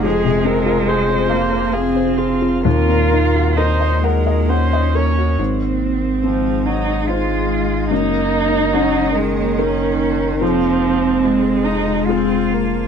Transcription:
<<
  \new Staff \with { instrumentName = "Felt piano" } { \time 3/4 \key ees \dorian \tempo 4 = 71 f,16 c16 c'16 f'16 aes'16 c''16 f''16 c''16 f''16 c''16 aes'16 f'16 | ees,16 bes,16 ees'16 ges'16 bes'16 ees''16 ges''16 ees''16 ges''16 ees''16 bes'16 ges'16 | aes,4 c'4 <ees' c''>4 | ges,4 des'4 <ees' bes'>4 |
f,4 aes4 <f' aes'>4 | }
  \new Staff \with { instrumentName = "Ambient pad" } { \time 3/4 \key ees \dorian << { <c' f''>2. | <bes ees''>2. | <aes ees''>2. | <bes des''>2. |
<aes c''>2. | } \\ { f'2. | ges2. | ees'2.~ | ees'2. |
f''2. | } >> }
  \new Staff \with { instrumentName = "Viola" } { \time 3/4 \key ees \dorian aes'8 bes'8 c''4 aes'8 f'8 | bes'4 c''8 bes'8 c''8 des''8 | r4 f8 ges8 aes4 | bes4 ges8 ees4. |
f4 aes4 c'8 bes8 | }
  \new Staff \with { instrumentName = "Cello" } { \time 3/4 \key ees \dorian aes4. bes8 c'4 | f'4 ees'8 aes8 des'4 | c'4. ees'8 f'4 | ees'4. aes8 des'4 |
c'4. ees'8 f'4 | }
  \new Staff \with { instrumentName = "Sub bass" } { \clef bass \time 3/4 \key ees \dorian f,,2. | ees,2. | aes,,2. | ges,,2. |
f,,2. | }
>>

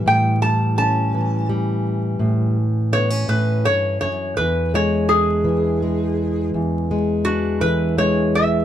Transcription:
<<
  \new Staff \with { instrumentName = "Resonator guitar played with a steel bar" } { \time 12/8 \key e \dorian \tempo 4. = 56 g''8 a''8 a''4 r2 cis''8 b'8 cis''8 cis''8 | b'8 cis''8 gis'2 r4 fis'8 b'8 cis''8 e''8 | }
  \new Staff \with { instrumentName = "Steel-string acoustic guitar" } { \clef bass \time 12/8 \key e \dorian << { g8 g8 cis'4 g4. r8 b16 cis'4.~ cis'16 | r8 gis8 d'4 gis4. gis8 d'4 gis4 | } \\ { a,4. e4. a,4. a,8 g,8 fis,8 | e,4. e4. e,4. e4. | } >> }
>>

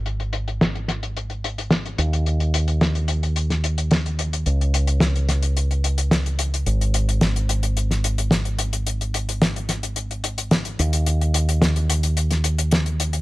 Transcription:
<<
  \new Staff \with { instrumentName = "Fingered electric bass" } { \clef bass \time 4/4 \key dis \phrygian \tempo 4 = 109 gis,,2.~ gis,,8 dis,8~ | dis,1 | cis,1 | gis,,1~ |
gis,,2.~ gis,,8 dis,8~ | dis,1 | }
  \new DrumStaff \with { instrumentName = "Drums" } \drummode { \time 4/4 hh16 hh16 hh16 hh16 <hh sn>16 hh16 <hh sn>16 hh16 hh16 hh16 hh16 hh16 <hh sn>16 hh16 hh16 hh16 | hh16 hh16 hh16 hh16 <hh sn>16 hh16 hh16 hh16 hh16 <hh sn>16 hh16 hh16 <hh sn>16 hh16 hh16 hh16 | hh16 hh16 hh16 hh16 <hh sn>16 hh16 <hh sn>16 hh16 hh16 hh16 hh16 hh16 <hh sn>16 hh16 hh16 hh16 | hh16 hh16 hh16 hh16 <hh sn>16 hh16 hh16 hh16 hh16 <hh sn>16 hh16 hh16 <hh sn>16 hh16 hh16 hh16 |
hh16 hh16 hh16 hh16 <hh sn>16 hh16 <hh sn>16 hh16 hh16 hh16 hh16 hh16 <hh sn>16 hh16 hh16 hh16 | hh16 hh16 hh16 hh16 <hh sn>16 hh16 hh16 hh16 hh16 <hh sn>16 hh16 hh16 <hh sn>16 hh16 hh16 hh16 | }
>>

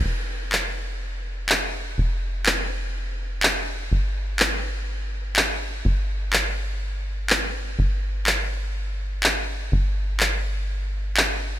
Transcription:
<<
  \new Staff \with { instrumentName = "Analog synth bass" } { \clef bass \time 4/4 \key g \phrygian \tempo 4 = 124 r1 | f,,1 | g,,1 | g,,1 |
g,,1 | g,,1 | }
  \new DrumStaff \with { instrumentName = "Drums" } \drummode { \time 4/4 r4 hc4 r4 hc4 | r4 hc4 r4 hc4 | r4 hc4 r4 hc4 | r4 hc4 r4 hc4 |
r4 hc4 r4 hc4 | r4 hc4 r4 hc4 | }
>>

